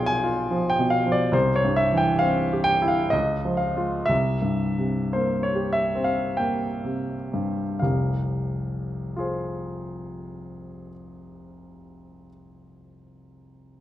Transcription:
Already playing: B1 B2 F3 F4 G#4 D5 F5 G5
0.06 G#5
0.24 F4
0.51 F3
0.70 G5
0.79 B2
0.90 F5
1.06 F3
1.12 D5
1.32 C2 C5
1.56 C#5
1.65 G2
1.76 E5
1.93 E3
1.97 G5
2.19 C4 F5
2.53 G4
2.64 G5
2.82 E4
2.88 F5
3.10 C#2 D#5
3.45 F3
3.57 F5
3.76 G#3 F4
4.06 C2 E5
4.42 G2
4.78 C3
5.13 A#3 C5
5.43 C#5
5.55 G4
5.73 E5
5.95 C4
6.04 F5
6.37 A#3 G5
6.84 C3
7.34 G2
7.79 F1 C2 F5
9.16 F4 G#4 C5

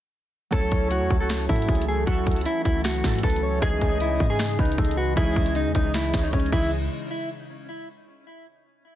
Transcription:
0.51 C#2 E3 F#3 A3 C#4 E4 A4 C#5, kick, closed hi-hat
0.72 C#2, kick, closed hi-hat
0.91 F#4, closed hi-hat
1.01 E2
1.11 C#2, kick
1.18 F#3 A3 C#4 E4 F#4 A4
1.29 snare, closed hi-hat
1.49 G#2 E4 A4, kick, closed hi-hat
1.56 closed hi-hat
1.62 closed hi-hat
1.68 C#2 G#4, kick, closed hi-hat
1.75 closed hi-hat
1.82 closed hi-hat
1.88 G#4 A4
2.06 C#2 F#3 A3 C#4 E4 F#4 A4, kick, closed hi-hat
2.27 C#2, kick, closed hi-hat
2.32 F#3, closed hi-hat
2.36 A3 C#4 E4 A4, closed hi-hat
2.41 closed hi-hat
2.46 E4, closed hi-hat
2.65 C#2 E4, kick, closed hi-hat
2.74 F#3 A3 C#4 E4 A4
2.84 F#4, snare, closed hi-hat
3.02 G#2 F#3 A3 C#4 E4 A4, kick, snare, closed hi-hat
3.09 closed hi-hat
3.14 closed hi-hat
3.19 closed hi-hat
3.23 C#2 A4 B4, kick, closed hi-hat
3.30 closed hi-hat
3.36 closed hi-hat
3.43 C#5
3.60 C#2 C#3 E3 G#3 C#4 D#4 G#4 D#5, kick, closed hi-hat
3.81 C#2, kick, closed hi-hat
4.00 E4, closed hi-hat
4.20 G#2, kick
4.28 E3 G#3 C#4 D#4 G#4
4.39 snare, closed hi-hat
4.59 C#2 D#4 B4, kick, closed hi-hat
4.65 closed hi-hat
4.72 closed hi-hat
4.78 C#2 A4, kick, closed hi-hat
4.85 closed hi-hat
4.91 closed hi-hat
4.97 F#4 B4
5.15 C#2 E3 G#3 C#4 D#4 E4 G#4, kick, closed hi-hat
5.36 C#2, kick, closed hi-hat
5.44 E3 G#3 C#4 D#4 G#4, closed hi-hat
5.55 D#4, closed hi-hat
5.65 E2
5.75 C#2 D#4, kick, closed hi-hat
5.83 E3 G#3 C#4 D#4 G#4
5.94 E4, snare, closed hi-hat
6.12 C#2 E3 G#3 C#4 D#4 G#4 C#5, kick, snare, closed hi-hat
6.24 D#4
6.33 C#2 C#4, kick, closed hi-hat
6.40 closed hi-hat
6.46 closed hi-hat
6.52 C#2 E3 C#4 D#4 E4 G#4 E5, kick, crash

